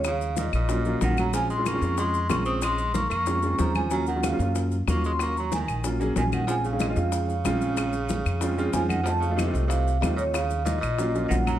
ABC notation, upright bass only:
X:1
M:4/4
L:1/8
Q:1/4=186
K:Bbm
V:1 name="Upright bass" clef=bass
E,,3 B,,,3 B,,,2- | B,,,3 F,,3 B,,,2- | B,,,3 F,,3 E,,2- | E,,3 G,,3 E,,2- |
E,,3 B,,,3 B,,,2- | B,,,3 F,,3 B,,,2- | B,,,3 F,,3 F,,2- | F,,3 C,,3 E,,2- |
E,,3 B,,,3 B,,,2 |]